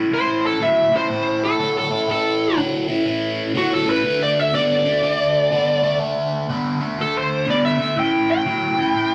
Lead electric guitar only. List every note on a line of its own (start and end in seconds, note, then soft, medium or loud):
0.14 0.44 C5 medium
0.46 0.61 A4 medium
0.63 0.93 E5 medium
0.96 1.42 C5 medium
1.45 1.75 A4 medium
1.78 2.08 A4 medium
2.11 2.57 A4 medium
3.57 3.72 F#4 medium
3.73 3.88 A4 medium
3.90 4.20 B4 medium
4.23 4.40 D5 medium
4.40 4.54 E5 medium
4.55 5.97 D5 loud
7.01 7.16 A4 loud
7.18 7.48 C5 medium
7.50 7.65 D5 medium
7.65 7.96 E5 medium
7.99 8.30 G5 medium
8.31 9.15 G5 loud